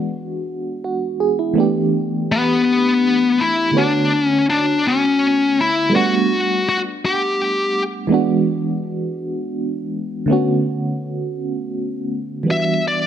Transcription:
Already playing: fm electric piano E3 G#3 B3 D4 F#4
0.84 fm electric piano F#4
1.20 fm electric piano G#4
1.39 fm electric piano E4
1.54 fm electric piano E3 A3 B3
1.58 fm electric piano D4 G4
2.32 lead electric guitar B3
3.41 lead electric guitar E4
3.72 fm electric piano D3 A3 B3
3.77 lead electric guitar D4, fm electric piano F#4 C#5
4.24 lead electric guitar C#4
4.50 lead electric guitar D4
4.88 lead electric guitar C#4
5.61 lead electric guitar E4
5.90 fm electric piano G3 A3 B3
5.94 fm electric piano D4 F#5, lead electric guitar F#4
6.69 lead electric guitar F#4
7.05 lead electric guitar G4
8.07 fm electric piano E3 G#3 B3
8.12 fm electric piano D4 F#4
10.26 fm electric piano D3 A3 B3
10.31 fm electric piano C#4 F#4
12.43 fm electric piano E3 G3 B3
12.48 fm electric piano D4 F#4, lead electric guitar E5
12.88 lead electric guitar D5

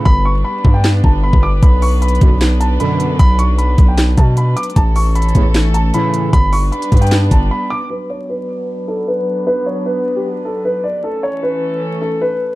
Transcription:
0.05 808-style bass G1, string section G3 B3 D4 B4, grand piano B5, kick
0.25 grand piano C#6
0.44 grand piano B5
0.65 808-style bass G2, kick
0.74 grand piano G5
0.84 snare, clap
1.04 808-style bass G1, grand piano A5, kick
1.23 grand piano B5
1.33 808-style bass G1, kick
1.43 grand piano D6
1.63 808-style bass B1, string section F#3 D4, grand piano B5, kick, closed hi-hat
1.82 grand piano C#6, open hi-hat
2.02 grand piano B5, closed hi-hat
2.08 closed hi-hat
2.15 closed hi-hat
2.21 808-style bass B1, analog polysynth F#2 B2 D3, kick, closed hi-hat
2.41 snare, clap, closed hi-hat
2.60 grand piano A5, closed hi-hat
2.80 analog polysynth F#2 B2 D3, grand piano B5, closed hi-hat
3.00 closed hi-hat
3.19 808-style bass B1, grand piano B5, kick, closed hi-hat
3.39 grand piano C#6, closed hi-hat
3.58 grand piano B5, closed hi-hat
3.78 808-style bass B1, kick, closed hi-hat
3.88 grand piano G5
3.98 snare, clap, closed hi-hat
4.17 808-style bass B2, grand piano A5, kick, closed hi-hat
4.37 grand piano B5, closed hi-hat
4.56 grand piano D6, closed hi-hat
4.63 closed hi-hat
4.70 closed hi-hat
4.76 808-style bass A1, string section E3 A3 C#4 A4, grand piano A5, kick, closed hi-hat
4.96 grand piano C#6, open hi-hat
5.15 grand piano B5, closed hi-hat
5.22 closed hi-hat
5.29 closed hi-hat
5.35 808-style bass A1, analog polysynth E2 A2 C#3, kick, closed hi-hat
5.54 snare, clap, closed hi-hat
5.74 grand piano A5, closed hi-hat
5.94 analog polysynth A2 C#3 E3, grand piano B5, closed hi-hat
6.14 closed hi-hat
6.33 808-style bass G1, string section G3 B3 D4 B4, grand piano B5, kick, closed hi-hat
6.53 grand piano C#6, open hi-hat
6.72 grand piano B5, closed hi-hat
6.82 closed hi-hat
6.92 808-style bass G2, kick, closed hi-hat
6.97 closed hi-hat
7.01 grand piano G5, closed hi-hat
7.07 closed hi-hat
7.11 snare, clap, closed hi-hat
7.31 808-style bass G1, grand piano A5, kick, closed hi-hat
7.51 grand piano B5
7.70 grand piano D6
7.90 string section F#3 B3 D4 B4, grand piano B4
8.10 grand piano C#5
8.30 grand piano B4
8.88 grand piano A4
9.08 grand piano B4
9.47 grand piano B4
9.66 grand piano C#5
9.86 grand piano B4
10.16 grand piano G4
10.45 grand piano A4
10.65 grand piano B4
10.84 grand piano D5
11.04 string section E3 A3 C#4 A4, grand piano A4
11.23 grand piano C#5
11.43 grand piano B4
12.02 grand piano A4
12.22 grand piano B4

